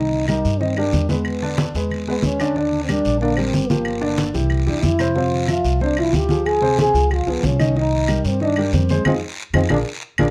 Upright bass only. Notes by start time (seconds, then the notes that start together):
Already playing: C2
0.45 G2
0.93 E2
1.74 E2
2.23 D#2
3.05 A#1
3.53 G1
4.34 C2
4.67 E2
4.83 F2
5.64 C2
6.13 D2
6.94 C#2
7.26 C#2
7.43 C2
8.25 G2
8.73 F2
9.05 F2
9.53 F2
9.70 A#1
10.19 A#1